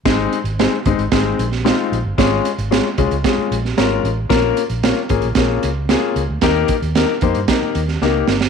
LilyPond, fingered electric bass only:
\new Staff \with { instrumentName = "Fingered electric bass" } { \clef bass \time 4/4 \key aes \major \tempo 4 = 113 aes,,8 r16 aes,,8 r16 g,,16 aes,,16 aes,,8 bes,,8. r16 bes,,16 g,,16 | aes,,8 r16 aes,,8 r16 c,16 des,16 r8 bes,,8 aes,,8 a,,8 | bes,,8 r16 bes,,8 r16 aes,,16 bes,,16 bes,,8 des,8. r16 des,16 d,16 | ees,8 r16 ees,8 r16 f,16 g,16 r8 ees,8 des,8 g,,8 | }